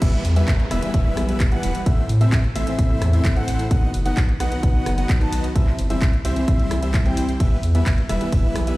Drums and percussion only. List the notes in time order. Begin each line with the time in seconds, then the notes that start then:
0.02 kick, closed hi-hat, crash
0.25 open hi-hat
0.36 closed hi-hat
0.48 kick, clap, closed hi-hat
0.59 closed hi-hat
0.71 cross-stick, open hi-hat
0.82 closed hi-hat
0.94 kick, closed hi-hat
1.17 cross-stick, open hi-hat
1.29 closed hi-hat
1.40 kick, clap, closed hi-hat
1.52 closed hi-hat
1.63 open hi-hat
1.75 closed hi-hat
1.86 kick, closed hi-hat
2.09 open hi-hat
2.21 closed hi-hat
2.32 kick, clap, closed hi-hat
2.44 closed hi-hat
2.56 open hi-hat
2.67 closed hi-hat
2.79 kick, closed hi-hat
3.02 cross-stick, open hi-hat
3.13 closed hi-hat
3.25 kick, clap, closed hi-hat
3.36 closed hi-hat
3.48 open hi-hat
3.59 closed hi-hat
3.71 kick, closed hi-hat
3.94 open hi-hat
4.06 closed hi-hat
4.17 kick, clap, closed hi-hat
4.29 closed hi-hat
4.40 cross-stick, open hi-hat
4.52 closed hi-hat
4.63 kick, closed hi-hat
4.86 cross-stick, open hi-hat
4.98 closed hi-hat
5.09 kick, clap, closed hi-hat
5.21 closed hi-hat
5.32 open hi-hat
5.44 closed hi-hat
5.56 kick, closed hi-hat
5.67 clap
5.79 open hi-hat
5.90 closed hi-hat
6.02 kick, clap, closed hi-hat
6.13 closed hi-hat
6.25 open hi-hat
6.36 closed hi-hat
6.48 kick, closed hi-hat
6.59 closed hi-hat
6.71 cross-stick, open hi-hat
6.83 closed hi-hat
6.94 kick, clap, closed hi-hat
7.06 closed hi-hat
7.17 open hi-hat
7.29 closed hi-hat
7.40 kick, closed hi-hat, ride
7.63 open hi-hat
7.75 closed hi-hat
7.86 kick, clap, closed hi-hat, ride
7.98 closed hi-hat
8.09 cross-stick, open hi-hat
8.21 closed hi-hat
8.32 kick, closed hi-hat, ride
8.56 cross-stick, open hi-hat
8.67 closed hi-hat